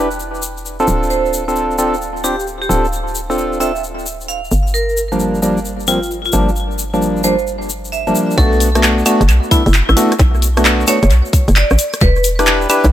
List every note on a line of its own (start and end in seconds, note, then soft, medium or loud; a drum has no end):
0.00 0.86 E1 medium
0.11 shaker soft
0.19 shaker soft
0.35 shaker soft
0.42 shaker medium
0.57 shaker soft
0.66 shaker soft
0.80 1.45 C4 medium
0.80 1.45 D4 medium
0.80 1.45 F4 medium
0.80 1.45 A4 loud
0.80 shaker soft
0.87 2.68 D1 medium
0.87 shaker medium
1.03 shaker soft
1.10 1.35 C5 medium
1.10 shaker soft
1.26 shaker soft
1.33 shaker medium
1.48 1.77 C4 medium
1.48 1.77 D4 medium
1.48 1.77 F4 medium
1.48 1.77 A4 medium
1.48 shaker soft
1.56 shaker soft
1.71 shaker soft
1.78 1.96 C4 medium
1.78 1.96 D4 medium
1.78 1.96 F4 medium
1.78 1.96 A4 medium
1.78 shaker medium
1.94 shaker soft
2.01 shaker soft
2.17 shaker soft
2.24 2.36 C4 medium
2.24 2.36 D4 medium
2.24 2.36 F4 medium
2.24 2.44 G4 medium
2.24 2.36 G4 medium
2.24 shaker medium
2.40 shaker soft
2.47 shaker soft
2.62 2.79 G4 medium
2.62 shaker soft
2.69 4.50 D1 medium
2.69 2.86 C4 medium
2.69 2.86 D4 medium
2.69 2.86 F4 medium
2.69 2.86 A4 loud
2.69 shaker medium
2.85 shaker soft
2.93 shaker soft
3.08 shaker soft
3.15 shaker medium
3.30 3.59 C4 medium
3.30 3.58 D4 medium
3.30 3.59 F4 medium
3.30 3.59 A4 medium
3.30 shaker soft
3.38 shaker soft
3.53 shaker soft
3.60 3.72 C4 medium
3.60 3.72 D4 medium
3.60 3.72 F4 medium
3.60 3.72 A4 medium
3.60 3.80 E5 medium
3.60 shaker medium
3.76 shaker soft
3.84 shaker soft
3.99 shaker soft
4.06 shaker medium
4.21 shaker soft
4.28 4.54 F5 medium
4.28 shaker soft
4.44 shaker soft
4.51 6.32 G1 medium
4.51 shaker medium
4.67 shaker soft
4.74 4.99 A#4 medium
4.74 shaker soft
4.89 shaker soft
4.97 shaker medium
5.12 5.40 F3 medium
5.12 5.40 G3 medium
5.12 5.40 A#3 medium
5.12 5.40 D4 medium
5.12 shaker soft
5.19 shaker soft
5.35 shaker soft
5.42 5.59 F3 medium
5.42 5.59 G3 medium
5.42 5.59 A#3 medium
5.42 5.59 D4 medium
5.42 shaker medium
5.57 shaker soft
5.65 shaker soft
5.80 shaker soft
5.87 6.00 F3 medium
5.87 6.00 G3 medium
5.87 6.00 A#3 medium
5.87 6.00 C4 medium
5.87 6.08 F4 medium
5.87 shaker medium
6.03 shaker soft
6.11 shaker soft
6.25 6.43 F4 medium
6.25 shaker soft
6.32 8.14 G1 medium
6.32 6.50 F3 loud
6.32 6.50 G3 medium
6.32 6.50 A#3 medium
6.32 6.50 D4 loud
6.32 shaker medium
6.49 shaker soft
6.56 shaker soft
6.71 shaker soft
6.78 shaker medium
6.94 7.22 F3 medium
6.94 7.22 G3 medium
6.94 7.22 A#3 medium
6.94 7.22 D4 medium
6.94 shaker soft
7.02 shaker soft
7.17 shaker soft
7.24 7.36 F3 medium
7.24 7.36 G3 medium
7.24 7.36 A#3 medium
7.24 7.36 D4 medium
7.24 7.44 C5 medium
7.24 shaker medium
7.38 shaker soft
7.47 shaker soft
7.62 shaker soft
7.69 shaker medium
7.85 shaker soft
7.92 8.17 E5 medium
7.92 shaker soft
8.07 8.37 F3 medium
8.07 8.37 G3 medium
8.07 8.37 A#3 medium
8.07 8.36 D4 loud
8.07 shaker soft
8.15 shaker medium
8.31 shaker soft
8.38 9.03 B1 loud
8.38 8.69 A3 loud
8.38 8.69 B3 medium
8.38 8.69 D4 medium
8.38 8.69 F#4 loud
8.38 8.63 A4 loud
8.38 kick loud
8.38 closed hi-hat medium
8.38 shaker medium
8.52 shaker soft
8.60 open hi-hat loud
8.60 shaker medium
8.75 9.04 A3 medium
8.75 9.04 B3 medium
8.75 9.04 D4 medium
8.75 9.04 F#4 medium
8.75 cross-stick medium
8.75 closed hi-hat medium
8.75 shaker soft
8.83 clap loud
8.83 closed hi-hat medium
8.83 shaker medium
8.98 shaker soft
9.06 9.23 A3 medium
9.06 9.23 B3 medium
9.06 9.23 D4 medium
9.06 9.23 F#4 loud
9.06 open hi-hat loud
9.06 claves medium
9.06 shaker medium
9.21 9.30 F#1 medium
9.21 closed hi-hat soft
9.21 shaker soft
9.29 9.40 B1 medium
9.29 closed hi-hat medium
9.29 claves medium
9.29 shaker medium
9.43 shaker soft
9.51 9.63 A3 medium
9.51 9.63 B3 medium
9.51 9.63 D4 medium
9.51 9.71 E4 medium
9.51 9.63 E4 medium
9.51 kick loud
9.51 open hi-hat loud
9.51 shaker medium
9.66 9.82 F#1 loud
9.66 closed hi-hat soft
9.66 shaker soft
9.74 clap loud
9.74 closed hi-hat medium
9.74 shaker soft
9.89 9.95 A1 medium
9.89 10.06 E4 medium
9.89 cross-stick medium
9.89 shaker soft
9.97 10.14 A3 loud
9.97 10.14 B3 medium
9.97 10.14 D4 medium
9.97 10.14 F#4 loud
9.97 open hi-hat loud
9.97 shaker medium
10.12 cross-stick medium
10.12 closed hi-hat medium
10.12 shaker soft
10.19 10.85 B1 loud
10.19 kick loud
10.19 closed hi-hat medium
10.19 shaker medium
10.34 shaker soft
10.42 open hi-hat loud
10.42 shaker loud
10.57 10.86 A3 medium
10.57 10.86 B3 medium
10.57 10.86 D4 medium
10.57 10.86 F#4 medium
10.57 cross-stick medium
10.57 closed hi-hat medium
10.57 shaker soft
10.65 clap loud
10.65 closed hi-hat medium
10.65 shaker medium
10.80 shaker soft
10.87 10.99 A3 medium
10.87 10.99 B3 medium
10.87 10.99 D4 medium
10.87 10.99 F#4 medium
10.87 11.08 C#5 medium
10.87 open hi-hat loud
10.87 claves medium
10.87 shaker loud
11.03 11.12 F#1 medium
11.03 closed hi-hat soft
11.03 shaker soft
11.10 11.22 B1 medium
11.10 closed hi-hat medium
11.10 shaker medium
11.25 shaker soft
11.33 kick loud
11.33 open hi-hat loud
11.33 shaker medium
11.48 11.64 F#1 loud
11.48 closed hi-hat soft
11.48 shaker soft
11.56 11.81 D5 loud
11.56 clap loud
11.56 closed hi-hat medium
11.56 shaker medium
11.70 11.77 A1 medium
11.70 cross-stick medium
11.70 shaker soft
11.78 open hi-hat loud
11.78 shaker loud
11.93 cross-stick medium
11.93 closed hi-hat medium
11.93 shaker soft
12.01 12.67 E1 loud
12.01 12.26 B4 loud
12.01 kick loud
12.01 closed hi-hat medium
12.01 shaker medium
12.16 shaker soft
12.24 open hi-hat loud
12.24 shaker loud
12.39 12.68 D4 medium
12.39 12.68 E4 medium
12.39 12.68 G4 medium
12.39 12.68 B4 medium
12.39 cross-stick medium
12.39 closed hi-hat medium
12.39 shaker soft
12.46 clap loud
12.46 closed hi-hat medium
12.46 shaker medium
12.62 shaker soft
12.69 12.87 D4 medium
12.69 12.87 E4 medium
12.69 12.87 G4 medium
12.69 12.87 B4 loud
12.69 open hi-hat loud
12.69 claves medium
12.69 shaker medium
12.84 12.92 B1 medium
12.84 closed hi-hat soft
12.84 shaker soft